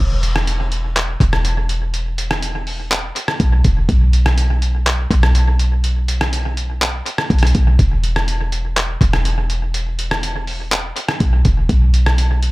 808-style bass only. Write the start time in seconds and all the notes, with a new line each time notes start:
0.00 E1
1.20 E1
3.40 B1
3.65 E1
3.89 B1
5.11 B1
7.30 B1
7.55 B1
7.79 E1
9.01 E1
11.20 B1
11.45 E1
11.69 B1